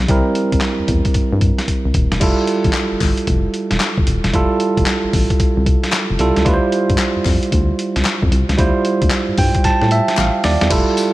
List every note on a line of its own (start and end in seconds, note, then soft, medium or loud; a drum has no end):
0.08 0.21 C2 loud
0.08 2.17 G3 medium
0.08 2.17 C4 medium
0.08 2.18 E4 medium
0.08 2.18 A#4 medium
0.08 kick loud
0.08 closed hi-hat medium
0.35 closed hi-hat medium
0.52 0.59 C2 medium
0.52 kick medium
0.52 closed hi-hat medium
0.61 snare loud
0.61 clap medium
0.61 closed hi-hat medium
0.80 0.83 E2 soft
0.88 1.01 E2 medium
0.88 kick medium
0.88 closed hi-hat medium
1.05 kick medium
1.05 closed hi-hat medium
1.14 1.22 G2 soft
1.14 kick medium
1.14 closed hi-hat medium
1.33 1.52 G2 loud
1.41 kick medium
1.41 closed hi-hat medium
1.59 snare medium
1.59 closed hi-hat medium
1.68 kick medium
1.68 closed hi-hat medium
1.85 1.92 C2 medium
1.94 2.07 D#1 loud
1.94 kick medium
1.94 closed hi-hat medium
2.12 2.19 E1 medium
2.12 snare medium
2.12 closed hi-hat soft
2.20 2.34 F1 loud
2.20 4.29 G3 medium
2.20 4.29 E4 medium
2.20 4.30 F4 medium
2.20 4.30 A4 medium
2.20 kick loud
2.20 closed hi-hat medium
2.20 crash medium
2.47 closed hi-hat medium
2.64 2.72 A1 medium
2.64 kick medium
2.64 closed hi-hat medium
2.73 snare loud
2.73 clap medium
2.73 closed hi-hat medium
2.92 2.96 G1 soft
3.00 3.14 G1 medium
3.00 kick loud
3.00 clap medium
3.00 open hi-hat medium
3.17 closed hi-hat medium
3.27 3.47 F1 loud
3.27 kick medium
3.27 closed hi-hat medium
3.54 closed hi-hat medium
3.71 3.78 E1 medium
3.71 snare medium
3.71 closed hi-hat medium
3.80 snare loud
3.80 clap medium
3.80 closed hi-hat medium
3.98 4.05 G1 medium
3.98 kick loud
4.07 4.20 D#1 medium
4.07 closed hi-hat medium
4.24 4.31 E1 medium
4.24 snare medium
4.24 closed hi-hat medium
4.33 4.46 F1 medium
4.33 6.15 G3 medium
4.33 6.16 E4 medium
4.33 6.16 F4 medium
4.33 6.17 A4 medium
4.33 kick loud
4.33 closed hi-hat medium
4.60 closed hi-hat medium
4.77 4.84 F1 medium
4.77 kick medium
4.77 closed hi-hat soft
4.86 snare loud
4.86 clap medium
4.86 closed hi-hat medium
5.04 5.08 A1 soft
5.13 5.26 A1 medium
5.13 kick medium
5.13 open hi-hat medium
5.30 kick medium
5.30 closed hi-hat medium
5.40 5.47 C2 medium
5.40 kick medium
5.40 closed hi-hat medium
5.57 5.77 C2 medium
5.66 kick loud
5.66 closed hi-hat medium
5.84 snare medium
5.84 closed hi-hat medium
5.92 snare loud
5.92 clap loud
5.92 clap medium
5.92 closed hi-hat medium
6.10 6.17 F1 medium
6.19 6.32 C2 medium
6.19 6.44 G3 medium
6.19 6.44 E4 medium
6.19 6.45 F4 medium
6.19 6.47 A4 medium
6.19 closed hi-hat medium
6.36 6.44 C#2 medium
6.36 snare medium
6.36 closed hi-hat soft
6.45 6.59 D2 loud
6.45 8.54 G3 medium
6.45 8.54 E4 medium
6.45 8.54 F4 medium
6.45 6.55 B4 medium
6.45 kick loud
6.45 closed hi-hat medium
6.54 8.58 C5 medium
6.72 closed hi-hat medium
6.90 6.97 G2 medium
6.90 kick medium
6.90 closed hi-hat soft
6.98 snare medium
6.98 clap medium
6.98 closed hi-hat medium
7.17 7.20 F2 soft
7.25 7.38 F2 medium
7.25 kick medium
7.25 clap medium
7.25 open hi-hat medium
7.43 closed hi-hat medium
7.52 7.72 D2 loud
7.52 kick medium
7.52 closed hi-hat medium
7.79 closed hi-hat medium
7.96 8.03 C2 medium
7.96 snare medium
7.96 closed hi-hat medium
8.05 snare loud
8.05 clap loud
8.05 clap medium
8.05 closed hi-hat medium
8.22 8.29 F2 medium
8.22 kick loud
8.32 8.44 C2 loud
8.32 closed hi-hat medium
8.49 8.56 C#2 medium
8.49 snare medium
8.49 closed hi-hat medium
8.58 8.71 D2 loud
8.58 10.66 G3 medium
8.58 10.67 E4 medium
8.58 10.67 F4 medium
8.58 10.67 C5 medium
8.58 kick loud
8.58 closed hi-hat medium
8.85 closed hi-hat medium
9.02 9.09 D2 medium
9.02 kick medium
9.02 closed hi-hat medium
9.11 snare medium
9.11 clap medium
9.11 closed hi-hat medium
9.29 9.32 G2 soft
9.38 9.51 G2 medium
9.38 9.63 G5 medium
9.38 kick loud
9.38 open hi-hat medium
9.55 kick loud
9.55 closed hi-hat medium
9.64 9.71 A2 soft
9.64 9.89 A5 medium
9.64 kick medium
9.64 snare medium
9.64 closed hi-hat medium
9.81 10.01 A2 medium
9.81 snare medium
9.91 10.16 E5 medium
9.91 closed hi-hat medium
10.08 snare medium
10.08 closed hi-hat medium
10.17 10.30 A1 medium
10.17 10.43 F5 medium
10.17 snare medium
10.17 clap loud
10.17 closed hi-hat medium
10.44 10.57 D#2 medium
10.44 10.69 D5 medium
10.44 snare loud
10.44 open hi-hat medium
10.61 10.69 E2 medium
10.61 snare loud
10.61 closed hi-hat medium
10.70 10.83 F1 loud
10.70 11.13 G3 medium
10.70 11.13 E4 medium
10.70 11.13 F4 medium
10.70 11.13 A4 medium
10.70 kick loud
10.70 closed hi-hat medium
10.70 crash loud
10.70 tambourine medium
10.97 closed hi-hat medium
10.97 tambourine medium